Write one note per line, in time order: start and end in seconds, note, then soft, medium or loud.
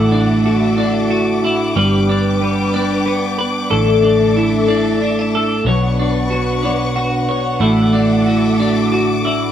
0.00 1.71 A1 medium
0.00 0.45 A2 medium
0.00 0.44 D3 medium
0.00 0.12 D4 medium
0.00 0.45 D4 medium
0.00 0.46 E4 medium
0.00 0.45 F#4 medium
0.00 1.73 A4 medium
0.00 1.73 E5 medium
0.00 1.72 F#5 medium
0.00 5.62 D6 medium
0.12 0.77 D4 medium
0.44 0.77 D3 medium
0.44 0.77 D4 medium
0.44 0.76 E4 medium
0.44 0.77 F#4 medium
0.77 1.44 A2 medium
0.77 1.45 D3 medium
0.77 1.45 D4 medium
0.77 1.41 E4 medium
0.77 1.43 F#4 medium
1.11 1.82 F#4 medium
1.42 1.75 D4 soft
1.42 1.75 E4 medium
1.42 1.76 F#4 soft
1.76 3.68 G1 medium
1.76 2.39 G3 medium
1.76 2.42 B3 medium
1.76 7.57 D4 medium
1.76 2.41 D4 medium
1.76 3.70 B4 medium
1.76 2.42 B4 medium
1.76 3.70 G5 medium
2.09 2.73 D4 medium
2.41 2.73 G3 medium
2.41 2.74 B3 medium
2.41 2.74 D4 medium
2.41 2.73 B4 medium
2.74 3.40 G3 medium
2.74 3.39 B3 medium
2.74 3.41 D4 medium
2.74 3.38 B4 medium
3.06 3.78 B3 medium
3.39 3.72 B3 medium
3.39 3.71 D4 medium
3.39 3.71 B4 medium
3.71 5.62 A1 loud
3.71 4.36 A2 medium
3.71 4.36 D3 medium
3.71 4.37 D4 medium
3.71 4.37 E4 medium
3.71 5.64 A4 medium
3.71 4.37 A4 medium
3.71 5.64 E5 medium
4.03 4.68 D4 medium
4.36 4.69 D3 medium
4.36 4.69 D4 medium
4.36 4.68 E4 medium
4.36 4.67 A4 medium
4.68 5.35 A2 medium
4.68 5.37 D3 medium
4.68 5.35 D4 medium
4.68 5.33 E4 medium
4.68 5.32 A4 medium
5.02 5.19 D4 medium
5.19 5.73 E4 soft
5.33 5.67 D4 medium
5.33 5.66 E4 medium
5.33 5.65 A4 medium
5.65 7.56 B1 loud
5.65 6.31 B2 medium
5.65 6.65 F#3 medium
5.65 6.30 B3 medium
5.65 6.32 D4 medium
5.65 6.33 F#4 medium
5.65 7.59 B4 medium
5.65 9.52 F#5 medium
5.65 7.59 C#6 medium
5.69 6.32 C#5 medium
5.99 6.63 D4 medium
6.31 6.63 B3 medium
6.31 6.63 D4 medium
6.31 6.63 F#4 medium
6.31 6.62 C#5 medium
6.64 7.29 B2 medium
6.64 7.61 F#3 medium
6.64 7.29 B3 medium
6.64 7.31 D4 medium
6.64 7.29 F#4 medium
6.64 7.27 C#5 medium
6.96 7.68 F#4 medium
7.28 7.62 B3 soft
7.28 7.62 D4 medium
7.28 7.62 F#4 medium
7.28 7.61 C#5 medium
7.60 9.52 A1 medium
7.60 8.26 A2 medium
7.60 8.26 D3 medium
7.60 8.27 D4 medium
7.60 8.28 E4 medium
7.60 8.27 F#4 medium
7.60 9.52 A4 medium
7.60 9.52 E5 medium
7.60 9.52 D6 loud
7.93 8.59 D4 medium
8.26 8.59 D3 medium
8.26 8.60 D4 medium
8.26 8.58 E4 medium
8.26 8.59 F#4 medium
8.59 9.26 A2 medium
8.59 9.26 D3 medium
8.59 9.26 D4 medium
8.59 9.22 E4 medium
8.59 9.24 F#4 medium
8.92 9.52 F#4 medium
9.23 9.52 D4 soft
9.23 9.52 E4 medium
9.23 9.52 F#4 soft